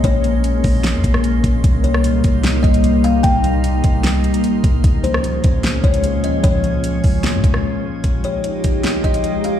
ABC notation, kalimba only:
X:1
M:4/4
L:1/8
Q:1/4=150
K:Fm
V:1 name="Kalimba"
d2 z6 | z d z3 e2 f | g2 z6 | z c z3 d2 e |
d2 z6 | z d z3 e2 f |]